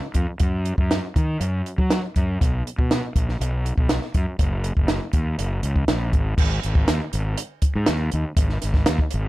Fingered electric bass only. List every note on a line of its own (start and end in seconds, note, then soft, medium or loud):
0.14 0.25 F2 medium
0.40 0.71 F#2 medium
0.78 0.98 F#2 medium
1.16 1.36 D#3 medium
1.40 1.61 F#2 loud
1.78 1.99 F#3 medium
2.16 2.36 F#2 medium
2.41 2.61 B1 medium
2.79 2.99 B2 medium
3.15 3.36 A#1 medium
3.40 3.71 B1 medium
3.78 3.98 B1 medium
4.15 4.25 F#2 medium
4.39 4.70 F#1 medium
4.77 4.98 F#1 medium
5.13 5.34 D#2 medium
5.39 5.59 F#1 medium
5.63 5.86 C#2 medium
5.88 6.11 A#1 medium
6.13 6.36 G#1 medium
6.37 6.59 G#1 loud
6.64 6.85 G#1 medium
6.89 6.99 D#2 medium
7.13 7.34 G#1 medium
7.75 7.86 G#2 medium
7.88 8.09 D#2 medium
8.13 8.23 D#2 medium
8.37 8.58 G#1 medium
8.63 8.84 G#1 medium
8.88 8.98 D#2 medium
9.14 9.28 G#1 medium